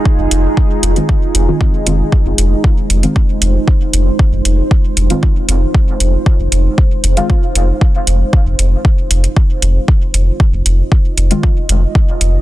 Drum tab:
HH |--x---xx--x---x-|--x---xx--x---x-|--x---xx--x---x-|--x---xx--x---x-|
BD |o---o---o---o---|o---o---o---o---|o---o---o---o---|o---o---o---o---|

HH |--x---xx--x---x-|--x---xx--x---x-|
BD |o---o---o---o---|o---o---o---o---|